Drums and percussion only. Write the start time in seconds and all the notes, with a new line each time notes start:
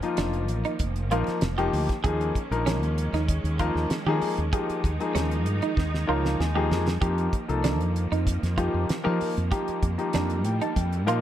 0.03 closed hi-hat
0.17 snare, closed hi-hat
0.33 closed hi-hat
0.48 closed hi-hat
0.65 closed hi-hat
0.79 kick, closed hi-hat
0.96 closed hi-hat
1.11 closed hi-hat
1.27 snare, closed hi-hat
1.41 snare, closed hi-hat
1.58 closed hi-hat
1.73 open hi-hat
1.89 kick, snare, closed hi-hat
2.04 kick, closed hi-hat
2.21 closed hi-hat
2.35 kick, closed hi-hat
2.52 closed hi-hat
2.67 snare, closed hi-hat
2.83 closed hi-hat
2.98 closed hi-hat
3.14 snare, closed hi-hat
3.28 kick, closed hi-hat
3.45 closed hi-hat
3.59 kick, closed hi-hat
3.76 snare
3.90 snare, closed hi-hat
4.22 open hi-hat
4.37 closed hi-hat
4.53 kick, closed hi-hat
4.70 closed hi-hat
4.84 kick, closed hi-hat
5.00 closed hi-hat
5.15 snare, closed hi-hat
5.31 closed hi-hat
5.46 closed hi-hat
5.62 closed hi-hat
5.77 kick, snare
5.94 snare
6.25 snare
6.40 snare
6.72 snare
6.88 snare
7.02 kick, closed hi-hat
7.18 closed hi-hat
7.33 kick, closed hi-hat
7.49 closed hi-hat
7.64 snare, closed hi-hat
7.81 closed hi-hat
7.96 closed hi-hat
8.12 closed hi-hat
8.27 kick, closed hi-hat
8.43 snare, closed hi-hat
8.58 kick, closed hi-hat
8.89 snare, closed hi-hat
9.21 open hi-hat
9.37 closed hi-hat
9.52 kick, closed hi-hat
9.68 closed hi-hat
9.83 kick, closed hi-hat
9.99 closed hi-hat
10.13 snare, closed hi-hat
10.30 closed hi-hat
10.45 closed hi-hat
10.61 closed hi-hat
10.76 kick, closed hi-hat
10.93 closed hi-hat
11.08 closed hi-hat